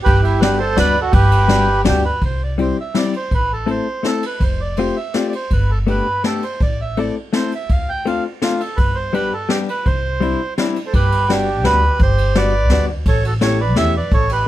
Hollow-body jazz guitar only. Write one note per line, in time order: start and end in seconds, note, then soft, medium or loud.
0.42 0.60 G3 medium
0.42 0.60 B3 medium
0.42 0.60 D4 medium
0.42 0.61 F#4 medium
0.77 0.95 G3 medium
0.77 0.95 B3 medium
0.77 0.95 D4 soft
0.77 0.96 F#4 medium
1.48 1.67 G3 medium
1.48 1.67 B3 medium
1.48 1.67 D4 soft
1.48 1.68 F#4 medium
1.85 2.03 G3 medium
1.85 2.04 B3 medium
1.85 2.04 D4 medium
1.85 2.04 F#4 medium
2.58 2.77 G3 soft
2.58 2.77 C4 soft
2.58 2.77 E4 soft
2.58 2.78 G4 soft
2.94 3.13 G3 medium
2.94 3.14 C4 soft
2.94 3.14 E4 soft
2.94 3.14 G4 soft
3.66 3.86 A3 soft
3.66 3.86 C4 soft
3.66 3.86 E4 soft
3.66 3.87 A4 medium
4.03 4.23 A3 soft
4.03 4.23 C4 soft
4.03 4.23 E4 soft
4.03 4.23 A4 medium
4.78 4.96 A3 soft
4.78 4.97 C4 soft
4.78 4.97 F4 soft
4.78 4.97 G4 medium
5.14 5.33 A3 soft
5.14 5.33 C4 soft
5.14 5.33 F4 soft
5.14 5.34 G4 medium
5.87 6.06 A3 soft
5.87 6.06 B3 soft
5.87 6.06 D4 soft
5.87 6.07 G4 soft
6.24 6.43 A3 soft
6.24 6.43 B3 soft
6.24 6.43 D4 soft
6.24 6.43 G4 soft
6.97 7.16 A3 soft
6.97 7.16 C4 soft
6.97 7.16 E4 soft
6.97 7.17 A4 medium
7.33 7.52 A3 medium
7.33 7.52 C4 soft
7.33 7.52 E4 soft
7.33 7.53 A4 soft
8.05 8.25 A3 soft
8.05 8.25 C4 soft
8.05 8.25 D4 soft
8.05 8.25 F4 medium
8.42 8.60 A3 soft
8.42 8.61 C4 soft
8.42 8.61 D4 soft
8.42 8.61 F4 medium
9.13 9.32 G3 soft
9.13 9.32 B3 soft
9.13 9.33 D4 soft
9.13 9.33 G4 medium
9.49 9.68 G3 medium
9.49 9.68 B3 soft
9.49 9.68 D4 medium
9.49 9.68 G4 medium
10.20 10.40 G3 soft
10.20 10.40 C4 soft
10.20 10.41 D4 soft
10.20 10.41 E4 medium
10.58 10.76 G3 medium
10.58 10.77 C4 soft
10.58 10.77 D4 medium
10.58 10.77 E4 medium
11.30 11.48 G3 soft
11.30 11.48 B3 medium
11.30 11.48 D4 soft
11.30 11.49 F#4 medium
11.64 11.83 G3 medium
11.64 11.83 B3 medium
11.64 11.83 D4 medium
11.64 11.83 F#4 medium
12.36 12.53 G3 medium
12.36 12.54 B3 soft
12.36 12.54 D4 soft
12.36 12.54 F#4 medium
12.71 12.89 G3 medium
12.71 12.89 B3 soft
12.71 12.89 D4 soft
12.71 12.90 F#4 medium
13.41 13.59 A3 medium
13.41 13.59 C#4 soft
13.41 13.60 E4 soft
13.41 13.60 G4 medium
13.76 13.94 A3 medium
13.76 13.94 C#4 medium
13.76 13.94 E4 soft
13.76 13.95 G4 medium